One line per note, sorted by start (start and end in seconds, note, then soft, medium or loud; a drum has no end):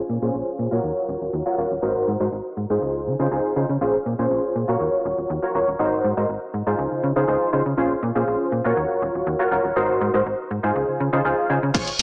0.09 0.18 A#2 loud
0.22 0.30 A#2 loud
0.22 0.68 C#4 medium
0.22 0.69 F4 medium
0.22 0.69 G#4 medium
0.22 0.69 C5 medium
0.34 0.43 A#1 medium
0.59 0.67 A#2 medium
0.71 0.80 A#2 medium
0.71 1.43 F4 medium
0.71 1.43 F#4 medium
0.71 1.43 A#4 medium
0.71 1.44 C#5 medium
0.84 0.92 D#2 medium
1.08 1.17 D#1 loud
1.21 1.29 D#1 medium
1.33 1.42 D#2 loud
1.46 1.55 F4 medium
1.46 1.55 F#4 medium
1.46 1.55 A#4 medium
1.46 1.55 C#5 medium
1.57 1.67 D#1 medium
1.57 1.72 F4 medium
1.57 1.72 F#4 medium
1.57 1.72 A#4 medium
1.57 1.73 C#5 medium
1.71 1.79 D#1 medium
1.82 1.95 G#1 loud
1.82 2.17 D#4 medium
1.82 2.17 F#4 medium
1.82 2.17 A#4 medium
1.82 2.18 C5 loud
1.96 2.05 G#2 soft
2.08 2.16 G#2 loud
2.20 2.28 G#2 loud
2.20 2.29 D#4 medium
2.20 2.29 F#4 medium
2.20 2.29 A#4 medium
2.20 2.29 C5 medium
2.32 2.41 G#1 medium
2.57 2.66 G#2 medium
2.70 2.78 G#2 medium
2.70 3.16 D#4 medium
2.70 3.17 F4 medium
2.70 3.17 G#4 medium
2.70 3.17 C5 medium
2.82 3.08 C#2 medium
3.06 3.15 C#3 loud
3.19 3.28 C#3 medium
3.19 3.28 D#4 medium
3.19 3.28 F4 medium
3.19 3.28 G#4 medium
3.19 3.28 C5 loud
3.31 3.40 C#2 medium
3.31 3.53 D#4 medium
3.31 3.54 F4 medium
3.31 3.54 G#4 medium
3.31 3.54 C5 medium
3.56 3.65 C#3 medium
3.56 3.65 D#4 medium
3.56 3.66 F4 medium
3.56 3.66 G#4 medium
3.56 3.66 C5 medium
3.69 3.77 C#3 loud
3.81 3.98 A#1 loud
3.81 3.96 C#4 medium
3.81 3.96 F4 medium
3.81 3.96 G#4 medium
3.81 3.96 C5 loud
4.06 4.14 A#2 medium
4.19 4.27 A#2 medium
4.19 4.65 C#4 medium
4.19 4.65 F4 medium
4.19 4.66 G#4 medium
4.19 4.66 C5 medium
4.31 4.39 A#1 medium
4.55 4.64 A#2 medium
4.68 4.76 A#2 medium
4.68 5.39 F4 medium
4.68 5.40 F#4 medium
4.68 5.40 A#4 medium
4.68 5.40 C#5 medium
4.80 4.89 D#2 medium
5.05 5.14 D#1 loud
5.18 5.26 D#1 medium
5.30 5.38 D#2 loud
5.42 5.52 F4 medium
5.42 5.52 F#4 medium
5.42 5.52 A#4 medium
5.42 5.52 C#5 medium
5.54 5.63 D#1 medium
5.54 5.69 F4 medium
5.54 5.69 F#4 medium
5.54 5.69 A#4 medium
5.54 5.69 C#5 medium
5.68 5.76 D#1 medium
5.79 5.92 G#1 medium
5.79 6.14 D#4 loud
5.79 6.14 F#4 medium
5.79 6.14 A#4 medium
5.79 6.14 C5 loud
5.93 6.02 G#2 soft
6.04 6.13 G#2 loud
6.17 6.25 G#2 loud
6.17 6.25 D#4 medium
6.17 6.26 F#4 medium
6.17 6.26 A#4 medium
6.17 6.26 C5 medium
6.29 6.38 G#1 medium
6.54 6.62 G#2 medium
6.66 6.75 G#2 medium
6.66 7.13 D#4 medium
6.66 7.13 F4 medium
6.66 7.13 G#4 medium
6.66 7.14 C5 medium
6.79 6.87 C#2 medium
6.92 7.01 C#3 soft
7.03 7.12 C#3 loud
7.16 7.24 C#3 medium
7.16 7.25 D#4 loud
7.16 7.25 F4 medium
7.16 7.25 G#4 medium
7.16 7.25 C5 loud
7.28 7.37 C#2 loud
7.28 7.50 D#4 medium
7.28 7.50 F4 medium
7.28 7.50 G#4 medium
7.28 7.50 C5 medium
7.53 7.62 C#3 medium
7.53 7.62 D#4 medium
7.53 7.62 F4 medium
7.53 7.62 G#4 medium
7.53 7.62 C5 medium
7.66 7.74 C#3 medium
7.77 7.95 A#1 medium
7.77 7.92 C#4 medium
7.77 7.92 F4 medium
7.77 7.92 G#4 medium
7.77 7.92 C5 loud
8.03 8.11 A#2 loud
8.15 8.23 A#2 loud
8.15 8.62 C#4 medium
8.15 8.62 F4 medium
8.15 8.62 G#4 medium
8.15 8.62 C5 medium
8.27 8.36 A#1 medium
8.52 8.61 A#2 medium
8.64 8.73 A#2 medium
8.64 9.36 F4 medium
8.64 9.36 F#4 medium
8.64 9.37 A#4 medium
8.64 9.37 C#5 medium
8.77 8.86 D#2 medium
9.02 9.10 D#1 loud
9.15 9.23 D#1 medium
9.27 9.35 D#2 loud
9.39 9.48 F4 medium
9.39 9.48 F#4 medium
9.39 9.49 A#4 medium
9.39 9.49 C#5 medium
9.51 9.60 D#1 medium
9.51 9.66 F4 medium
9.51 9.66 F#4 medium
9.51 9.66 A#4 medium
9.51 9.66 C#5 medium
9.64 9.72 D#1 medium
9.76 9.89 G#1 medium
9.76 10.11 D#4 loud
9.76 10.11 F#4 medium
9.76 10.11 A#4 medium
9.76 10.11 C5 loud
9.89 9.99 G#2 soft
10.01 10.10 G#2 loud
10.14 10.22 G#2 loud
10.14 10.22 D#4 medium
10.14 10.22 F#4 medium
10.14 10.22 A#4 medium
10.14 10.23 C5 medium
10.26 10.35 G#1 medium
10.51 10.59 G#2 medium
10.63 10.72 G#2 medium
10.63 11.10 D#4 medium
10.63 11.10 F4 medium
10.63 11.10 G#4 medium
10.63 11.10 C5 medium
10.75 10.84 C#2 medium
10.88 10.98 C#3 soft
11.00 11.09 C#3 medium
11.13 11.21 C#3 medium
11.13 11.21 D#4 loud
11.13 11.21 F4 medium
11.13 11.22 G#4 medium
11.13 11.22 C5 loud
11.24 11.34 C#2 medium
11.24 11.47 D#4 medium
11.24 11.47 F4 medium
11.24 11.47 G#4 medium
11.24 11.47 C5 medium
11.49 11.58 C#3 medium
11.49 11.59 D#4 medium
11.49 11.59 F4 medium
11.49 11.59 G#4 medium
11.49 11.59 C5 medium
11.63 11.71 C#3 medium
11.74 11.91 A#1 loud
11.74 11.89 F4 loud
11.74 11.89 G#4 medium
11.74 11.89 C5 medium
11.74 11.89 C#5 loud
11.74 kick loud
11.74 closed hi-hat medium
11.74 crash loud
11.74 cabasa soft
11.88 closed hi-hat soft